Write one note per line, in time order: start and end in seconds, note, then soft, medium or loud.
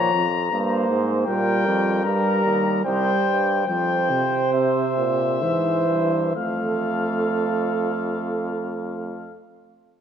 0.00 0.13 A#2 medium
0.00 0.25 F3 medium
0.00 0.24 C#5 medium
0.00 0.97 A#5 medium
0.14 0.50 F2 medium
0.51 0.88 G2 medium
0.51 1.23 A#3 medium
0.51 1.23 C5 medium
0.89 1.26 G#2 medium
1.26 1.67 A#2 medium
1.26 2.04 G3 medium
1.26 2.03 A#4 medium
1.26 2.00 G5 medium
1.65 2.06 F2 medium
2.04 2.44 G2 medium
2.04 2.84 G3 medium
2.04 2.84 A#4 medium
2.04 2.83 A#5 medium
2.45 2.84 D#2 medium
2.85 3.14 C2 medium
2.85 3.66 G3 medium
2.85 3.66 C5 medium
2.85 3.66 G5 medium
3.26 3.67 G2 medium
3.67 4.22 F2 medium
3.67 4.11 F3 medium
3.67 5.39 C5 medium
3.67 4.51 G5 medium
4.10 5.44 C3 medium
4.53 4.94 C3 medium
4.53 6.33 E5 medium
4.97 5.44 A#2 medium
5.42 5.88 G#2 medium
5.42 6.36 E3 medium
5.42 6.34 C5 medium
5.89 6.35 G2 medium
6.36 9.35 F2 medium
6.36 9.36 A3 medium
6.36 9.35 A4 medium
6.36 9.35 F5 medium